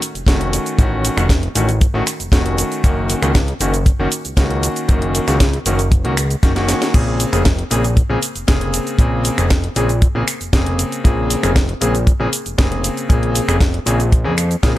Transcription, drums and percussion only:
0.02 open hi-hat, cabasa
0.15 closed hi-hat, cabasa
0.27 kick, snare, closed hi-hat, cabasa
0.41 closed hi-hat
0.53 open hi-hat, cabasa
0.66 closed hi-hat, cabasa
0.79 kick, closed hi-hat, cabasa
1.05 open hi-hat, cabasa
1.18 finger snap, closed hi-hat, cabasa
1.29 kick, snare, closed hi-hat, cabasa
1.43 closed hi-hat
1.55 open hi-hat, cabasa
1.69 closed hi-hat, cabasa
1.81 kick, closed hi-hat, cabasa
2.07 finger snap, open hi-hat, cabasa
2.20 closed hi-hat, cabasa
2.32 kick, snare, closed hi-hat, cabasa
2.46 closed hi-hat
2.58 open hi-hat, cabasa
2.72 closed hi-hat, cabasa
2.84 kick, closed hi-hat, cabasa
3.10 open hi-hat, cabasa
3.23 finger snap, closed hi-hat, cabasa
3.35 kick, snare, closed hi-hat, cabasa
3.48 closed hi-hat
3.61 open hi-hat, cabasa
3.74 closed hi-hat, cabasa
3.86 kick, closed hi-hat, cabasa
4.12 open hi-hat, cabasa
4.25 closed hi-hat, cabasa
4.37 kick, snare, closed hi-hat, cabasa
4.50 closed hi-hat
4.63 open hi-hat, cabasa
4.76 closed hi-hat, cabasa
4.89 kick, closed hi-hat, cabasa
5.02 closed hi-hat
5.15 open hi-hat, cabasa
5.28 finger snap, snare, closed hi-hat, cabasa
5.40 kick, snare, closed hi-hat, cabasa
5.53 closed hi-hat
5.66 open hi-hat, cabasa
5.79 closed hi-hat, cabasa
5.92 kick, closed hi-hat, cabasa
6.05 closed hi-hat
6.17 finger snap, open hi-hat, cabasa
6.31 closed hi-hat, cabasa
6.43 kick, snare, closed hi-hat, cabasa
6.56 snare, closed hi-hat
6.69 snare, open hi-hat, cabasa
6.82 snare, closed hi-hat, cabasa
6.94 kick, closed hi-hat, crash, cabasa
7.20 open hi-hat, cabasa
7.33 finger snap, closed hi-hat, cabasa
7.45 kick, snare, closed hi-hat, cabasa
7.59 closed hi-hat
7.71 open hi-hat, cabasa
7.84 closed hi-hat, cabasa
7.97 kick, closed hi-hat, cabasa
8.22 open hi-hat, cabasa
8.36 closed hi-hat, cabasa
8.48 kick, snare, closed hi-hat, cabasa
8.61 closed hi-hat
8.74 open hi-hat, cabasa
8.87 closed hi-hat, cabasa
8.99 kick, closed hi-hat, cabasa
9.25 open hi-hat, cabasa
9.38 finger snap, closed hi-hat, cabasa
9.50 kick, snare, closed hi-hat, cabasa
9.64 closed hi-hat
9.76 open hi-hat, cabasa
9.89 closed hi-hat, cabasa
10.02 kick, closed hi-hat, cabasa
10.28 finger snap, open hi-hat, cabasa
10.41 closed hi-hat, cabasa
10.53 kick, snare, closed hi-hat, cabasa
10.66 closed hi-hat
10.79 open hi-hat, cabasa
10.92 closed hi-hat, cabasa
11.05 kick, closed hi-hat, cabasa
11.30 open hi-hat, cabasa
11.43 finger snap, closed hi-hat, cabasa
11.56 kick, snare, closed hi-hat, cabasa
11.69 closed hi-hat
11.82 open hi-hat, cabasa
11.95 closed hi-hat, cabasa
12.07 kick, closed hi-hat, cabasa
12.33 open hi-hat, cabasa
12.46 closed hi-hat, cabasa
12.58 kick, snare, closed hi-hat, cabasa
12.72 closed hi-hat
12.84 open hi-hat, cabasa
12.97 closed hi-hat, cabasa
13.10 kick, closed hi-hat, cabasa
13.23 closed hi-hat
13.35 open hi-hat, cabasa
13.49 finger snap, closed hi-hat, cabasa
13.61 kick, snare, closed hi-hat, cabasa
13.74 closed hi-hat
13.87 open hi-hat, cabasa
14.00 closed hi-hat, cabasa
14.12 kick, closed hi-hat, cabasa
14.38 finger snap, open hi-hat, cabasa
14.51 closed hi-hat, cabasa
14.63 kick, snare, closed hi-hat, cabasa

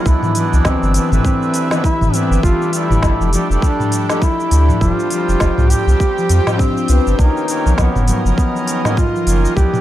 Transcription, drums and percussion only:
0.06 kick, shaker
0.23 mid tom, shaker
0.35 open hi-hat, shaker
0.53 shaker
0.65 kick, snare, shaker
0.83 shaker
0.94 open hi-hat, shaker
1.12 mid tom, shaker
1.25 kick, shaker
1.43 shaker
1.54 open hi-hat, shaker
1.71 snare, shaker
1.84 kick, shaker
2.01 mid tom, shaker
2.14 open hi-hat, shaker
2.32 shaker
2.43 kick, shaker
2.62 shaker
2.73 open hi-hat, shaker
2.91 mid tom, shaker
3.03 kick, snare, shaker
3.21 shaker
3.33 open hi-hat, shaker
3.51 shaker
3.62 kick, shaker
3.80 mid tom, shaker
3.92 open hi-hat, shaker
4.09 snare, shaker
4.22 kick, shaker
4.40 shaker
4.51 open hi-hat, shaker
4.69 mid tom, shaker
4.81 kick, shaker
5.00 shaker
5.10 open hi-hat, shaker
5.29 shaker
5.40 kick, snare, shaker
5.58 mid tom, shaker
5.70 open hi-hat, shaker
5.89 shaker
6.00 kick, shaker
6.18 shaker
6.29 open hi-hat, shaker
6.47 snare, mid tom, shaker
6.59 kick, shaker
6.77 shaker
6.88 open hi-hat, shaker
7.07 shaker
7.19 kick, shaker
7.37 shaker
7.48 open hi-hat, shaker
7.67 shaker
7.78 kick, snare, shaker
7.95 mid tom, shaker
8.08 open hi-hat, shaker
8.26 shaker
8.38 kick, shaker
8.56 shaker
8.68 open hi-hat, shaker
8.85 snare, mid tom, shaker
8.97 kick, shaker
9.16 shaker
9.27 open hi-hat, shaker
9.45 shaker
9.57 kick, shaker
9.74 mid tom, shaker

